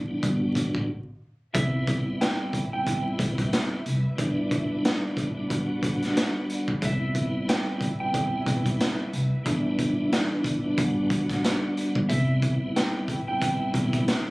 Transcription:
0.00 0.19 E2 loud
0.08 0.18 G3 medium
0.08 0.19 B3 medium
0.08 0.20 D4 medium
0.08 0.28 E4 loud
0.19 0.50 G1 loud
0.19 0.87 G3 medium
0.19 0.88 B3 medium
0.19 0.88 D4 medium
0.19 0.88 F#4 loud
0.19 kick loud
0.19 closed hi-hat medium
0.55 0.83 A1 medium
0.55 kick medium
0.55 closed hi-hat medium
0.75 kick medium
1.53 1.98 C2 loud
1.53 2.61 G3 medium
1.53 10.74 G3 medium
1.53 2.62 B3 medium
1.53 2.62 C4 medium
1.53 4.16 E4 medium
1.53 2.63 E4 loud
1.53 12.06 B4 medium
1.53 2.16 E5 loud
1.53 5.47 E5 medium
1.53 kick loud
1.53 closed hi-hat medium
1.87 kick medium
1.87 closed hi-hat medium
2.21 2.69 G5 medium
2.21 snare loud
2.21 closed hi-hat medium
2.53 kick medium
2.53 closed hi-hat medium
2.72 3.16 G3 medium
2.72 3.17 B3 medium
2.72 3.17 C4 medium
2.72 3.18 E4 loud
2.72 3.68 G5 medium
2.87 kick loud
2.87 closed hi-hat medium
3.17 3.47 B1 medium
3.17 3.80 G3 loud
3.17 3.80 B3 medium
3.17 3.81 C4 medium
3.17 3.81 E4 loud
3.17 kick medium
3.17 closed hi-hat medium
3.38 kick medium
3.38 closed hi-hat medium
3.53 snare loud
3.53 snare medium
3.53 closed hi-hat loud
3.86 4.01 C2 medium
3.86 closed hi-hat medium
4.16 4.64 G3 medium
4.16 4.65 B3 medium
4.16 4.65 D4 medium
4.16 6.80 D4 medium
4.16 4.66 E4 loud
4.16 kick loud
4.16 closed hi-hat medium
4.51 kick medium
4.51 closed hi-hat medium
4.67 5.29 G3 loud
4.67 5.29 B3 medium
4.67 5.30 D4 medium
4.67 5.30 E4 loud
4.85 snare loud
4.85 closed hi-hat medium
5.17 kick medium
5.17 closed hi-hat medium
5.35 5.45 G3 loud
5.35 5.46 B3 medium
5.35 5.47 D4 medium
5.35 5.55 E4 loud
5.47 6.71 G3 medium
5.47 6.72 B3 medium
5.47 6.72 D4 medium
5.47 6.73 F#4 loud
5.47 6.81 F#5 medium
5.47 kick loud
5.51 closed hi-hat medium
5.83 kick medium
5.83 closed hi-hat medium
6.02 snare soft
6.02 closed hi-hat medium
6.17 snare loud
6.17 snare medium
6.17 closed hi-hat loud
6.49 closed hi-hat medium
6.68 kick medium
6.81 7.25 C2 loud
6.81 7.89 G3 loud
6.81 7.89 B3 medium
6.81 7.89 C4 medium
6.81 9.43 E4 medium
6.81 7.90 E4 loud
6.81 10.73 E5 medium
6.81 kick loud
6.81 closed hi-hat medium
6.85 7.46 E5 loud
7.15 kick medium
7.15 closed hi-hat medium
7.49 7.97 G5 medium
7.49 snare loud
7.49 closed hi-hat medium
7.81 kick medium
7.81 closed hi-hat medium
8.00 8.43 G3 medium
8.00 8.44 B3 medium
8.00 8.44 C4 medium
8.00 8.45 E4 loud
8.00 8.95 G5 medium
8.14 kick loud
8.14 closed hi-hat medium
8.45 8.74 B1 loud
8.45 9.07 G3 loud
8.45 9.08 B3 medium
8.45 9.08 C4 medium
8.45 9.09 E4 loud
8.45 kick medium
8.45 closed hi-hat medium
8.66 kick medium
8.66 closed hi-hat medium
8.80 snare loud
8.80 snare medium
8.80 closed hi-hat loud
9.13 9.29 C2 medium
9.13 closed hi-hat medium
9.43 10.74 E2 loud
9.43 9.92 G3 loud
9.43 9.92 B3 medium
9.43 9.93 D4 medium
9.43 12.07 D4 medium
9.43 9.93 E4 loud
9.43 kick loud
9.43 closed hi-hat medium
9.79 kick medium
9.79 closed hi-hat medium
9.94 10.56 G3 loud
9.94 10.56 B3 medium
9.94 10.57 D4 medium
9.94 10.57 E4 loud
10.12 snare loud
10.12 closed hi-hat medium
10.44 kick medium
10.44 closed hi-hat medium
10.62 10.73 G3 medium
10.62 10.74 B3 medium
10.62 10.75 D4 medium
10.62 10.83 E4 loud
10.74 11.05 G1 loud
10.74 11.99 G3 medium
10.74 11.99 B3 medium
10.74 12.00 D4 medium
10.74 12.00 F#4 loud
10.74 kick loud
10.78 12.09 G3 medium
10.78 12.09 F#5 medium
10.78 closed hi-hat medium
11.10 11.38 A1 medium
11.10 kick medium
11.10 closed hi-hat medium
11.29 kick medium
11.29 snare soft
11.29 closed hi-hat medium
11.44 snare loud
11.44 closed hi-hat loud
11.77 closed hi-hat medium
11.95 12.07 G1 loud
11.95 kick medium
12.08 12.53 C2 loud
12.08 13.16 G3 loud
12.08 14.30 G3 medium
12.08 13.17 B3 medium
12.08 13.17 C4 medium
12.08 14.30 E4 medium
12.08 13.18 E4 loud
12.08 14.30 B4 medium
12.08 12.71 E5 loud
12.08 14.30 E5 medium
12.08 kick loud
12.08 closed hi-hat medium
12.42 kick loud
12.42 closed hi-hat medium
12.76 13.24 G5 medium
12.76 snare loud
12.76 closed hi-hat medium
13.08 kick medium
13.08 closed hi-hat medium
13.27 13.71 G3 medium
13.27 13.72 B3 medium
13.27 13.72 C4 medium
13.27 13.73 E4 loud
13.27 14.23 G5 medium
13.42 kick loud
13.42 closed hi-hat medium
13.72 14.02 B1 medium
13.72 14.30 G3 loud
13.72 14.30 B3 medium
13.72 14.30 C4 medium
13.72 14.30 E4 loud
13.72 kick medium
13.72 closed hi-hat medium
13.93 kick medium
13.93 closed hi-hat medium
14.08 snare loud
14.08 snare medium
14.08 closed hi-hat loud

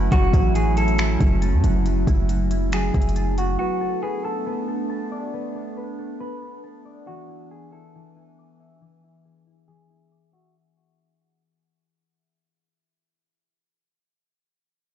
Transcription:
0.00 0.10 F#3 medium
0.00 3.56 F#3 medium
0.00 3.55 A3 medium
0.00 3.56 C#4 medium
0.00 0.33 E4 medium
0.00 3.56 E4 medium
0.00 0.55 F#4 medium
0.00 1.51 F#5 medium
0.00 1.13 A5 loud
0.12 0.33 F#1 loud
0.12 0.98 F#3 medium
0.12 0.53 F#4 loud
0.12 kick loud
0.12 closed hi-hat medium
0.33 1.17 A1 loud
0.33 0.77 E4 medium
0.33 kick medium
0.33 closed hi-hat medium
0.55 2.29 F#4 medium
0.55 0.76 G#4 medium
0.55 closed hi-hat medium
0.77 1.20 E4 medium
0.77 1.82 A4 medium
0.77 closed hi-hat medium
0.88 closed hi-hat soft
0.98 1.85 F#3 medium
0.98 finger snap loud
0.98 closed hi-hat medium
1.20 1.55 F#1 loud
1.20 2.07 E4 medium
1.20 kick medium
1.20 closed hi-hat medium
1.42 2.87 A5 loud
1.42 closed hi-hat medium
1.53 1.63 F#2 medium
1.64 2.06 F#1 loud
1.64 3.24 F#5 medium
1.64 closed hi-hat medium
1.86 2.72 F#3 loud
1.86 closed hi-hat medium
2.07 2.91 F#1 loud
2.07 2.50 E4 medium
2.07 kick medium
2.07 closed hi-hat medium
2.29 4.73 F#4 medium
2.29 closed hi-hat medium
2.50 2.94 E4 medium
2.50 closed hi-hat medium
2.72 3.65 F#3 medium
2.72 3.35 G#4 medium
2.72 finger snap loud
2.72 closed hi-hat medium
2.94 3.57 F#1 loud
2.94 5.56 E4 medium
2.94 kick medium
2.94 closed hi-hat soft
3.02 closed hi-hat medium
3.09 closed hi-hat medium
3.16 4.61 A5 medium
3.16 closed hi-hat medium
3.38 3.58 F#4 medium
3.38 4.99 F#5 medium
3.38 closed hi-hat medium
3.59 7.04 A3 medium
3.59 10.51 B3 medium
3.59 4.46 B3 medium
3.59 10.51 D4 medium
3.59 4.00 F#4 loud
3.81 4.24 A4 medium
4.03 4.24 G#4 medium
4.03 5.77 B4 medium
4.25 5.29 A4 medium
4.25 4.68 A4 medium
4.46 5.33 B3 medium
4.68 5.54 A4 medium
4.90 6.35 A5 medium
5.11 6.85 D5 medium
5.33 6.20 B3 medium
5.55 5.98 A4 medium
5.77 7.82 B4 medium
5.99 6.42 A4 medium
6.20 9.31 B3 medium
6.20 6.61 B4 medium
6.42 7.57 A4 medium
6.64 7.57 A5 loud
6.85 8.70 D5 medium
7.07 10.52 E3 medium
7.07 7.94 E3 medium
7.07 7.48 F#4 loud
7.07 10.52 G#5 medium
7.29 7.72 E4 medium
7.51 7.72 G#4 medium
7.51 9.01 G#5 medium
7.72 8.15 E4 medium
7.72 8.77 A4 medium
7.95 8.80 E3 medium
8.16 9.03 E4 medium
8.38 9.69 D6 medium
8.60 10.32 E5 medium
8.81 9.67 E3 medium
9.03 9.46 E4 medium
9.25 11.52 G#4 medium
9.47 9.90 E4 medium
9.68 10.60 E3 medium
9.68 10.29 G#4 medium
9.90 12.51 E4 medium
10.12 11.33 D6 medium
10.33 10.54 F#4 medium
10.33 12.06 E5 medium

